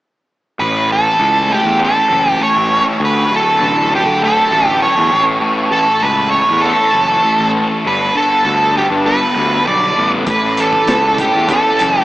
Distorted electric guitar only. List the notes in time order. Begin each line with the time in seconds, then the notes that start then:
0.59 A2
0.88 E3
1.19 E3
1.48 A3
1.79 C#4
2.09 E3
2.39 A3
2.70 C#4
3.00 D3
3.31 F#3
3.60 D3
3.92 F#3
4.22 A3
4.52 D3
4.82 F#3
5.12 A2
5.40 A2
5.71 E3
6.04 E3
6.32 A3
6.63 C#4
6.93 E3
7.24 A3
7.55 C#4
7.85 G2
8.15 D3
8.45 D3
8.75 G3
9.06 B3
9.36 D3
9.66 G3
9.96 B3
10.26 A2
10.58 E3
10.89 E3
11.18 A3
11.49 C#4
11.80 E3